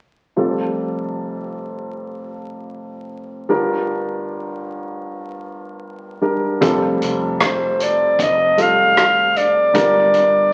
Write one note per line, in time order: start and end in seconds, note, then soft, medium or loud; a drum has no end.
0.36 3.45 F1 soft
0.36 3.46 F2 soft
0.36 3.45 G3 soft
0.36 3.46 F4 soft
0.36 3.46 A4 medium
3.49 6.58 G1 medium
3.49 6.58 G2 medium
3.49 6.18 G3 medium
3.49 6.19 D4 soft
3.49 6.19 A#4 medium
6.21 6.60 G3 soft
6.21 6.61 D4 soft
6.21 6.62 A#4 soft
6.61 9.71 F1 medium
6.61 6.97 F1 medium
6.61 9.71 F2 medium
6.61 7.57 G3 medium
6.61 7.57 F4 medium
6.61 7.57 A4 medium
6.61 kick medium
6.61 closed hi-hat medium
7.01 8.05 F1 medium
7.01 closed hi-hat soft
7.40 kick medium
7.40 cross-stick medium
7.40 closed hi-hat medium
7.45 7.84 C5 medium
7.80 8.24 D5 medium
7.80 closed hi-hat soft
8.19 9.56 F1 medium
8.19 8.63 D#5 medium
8.19 kick medium
8.19 closed hi-hat medium
8.57 9.29 G3 medium
8.57 9.29 F4 medium
8.57 9.29 A4 medium
8.57 9.38 F5 medium
8.57 closed hi-hat soft
8.97 cross-stick medium
8.97 closed hi-hat medium
9.36 10.53 D5 medium
9.36 closed hi-hat soft
9.73 10.53 G1 soft
9.73 10.09 G1 medium
9.73 10.53 G2 medium
9.73 10.53 G3 medium
9.73 10.53 D4 medium
9.73 10.53 A#4 medium
9.73 kick medium
9.73 closed hi-hat medium
10.13 10.53 G1 medium
10.13 closed hi-hat soft